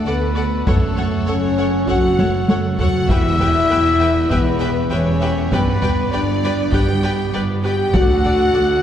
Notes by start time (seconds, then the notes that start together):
Already playing: A3 A4 D5 F#5
0.06 D2 B3 A4 B4 D5 F#5
0.36 A4 D5 F#5
0.67 F#1 F#2 A3 A4 C#5 F#5, taiko
0.97 A4 C#5 F#5, taiko low
1.27 F#1 F#2 C#4 A4 C#5 F#5
1.58 A4 C#5 F#5
1.88 F#1 F#2 F#4 A4 C#5 F#5, taiko
2.19 A4 C#5 F#5, taiko high
2.49 F#1 F#2 A4 C#5 F#5, taiko high
2.78 F#4 A4 C#5 F#5, taiko low
3.09 E1 E2 B3 E4 G4 B4 E5 G5, taiko
3.39 G4 B4 E5 G5, taiko low
3.69 E1 E2 G4 B4 E5 G5
4.00 G4 B4 E5 G5
4.30 E1 E2 B3 G4 B4 E5 G5, taiko
4.60 G4 B4 E5 G5
4.90 E1 E2 C#4 G4 B4 C#5 E5 G5
5.21 G4 B4 E5 G5
5.51 G1 G2 B3 G4 B4 D5 G5, taiko
5.82 G4 B4 D5 G5, taiko low
6.11 G1 G2 D4 G4 B4 D5 G5
6.44 G4 B4 D5 G5
6.71 G1 G2 G4 B4 D5 G5, taiko
7.03 G4 B4 D5 G5
7.32 G1 G2 G4 B4 D5 G5
7.63 G4 B4 D5 G5
7.93 D2 D4 F#4 A4 D5 F#5, taiko
8.24 A4 D5 F#5, taiko low
8.53 D2 A4 D5 F#5